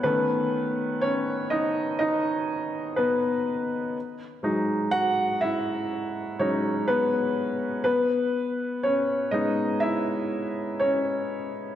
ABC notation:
X:1
M:4/4
L:1/16
Q:1/4=61
K:E
V:1 name="Upright piano"
[B,B]4 [Cc]2 [Dd]2 [Dd]4 [B,B]3 z | z4 [Ff]2 [Ee]4 [Cc]2 [B,B]3 z | [B,B]4 [Cc]2 [Dd]2 [Ee]4 [Cc]3 z |]
V:2 name="Upright piano" clef=bass
[D,A,C]6 z8 z2 | z2 [F,G,D]2 z6 [F,G,D]2 z4 | z6 [G,B,C]6 z4 |]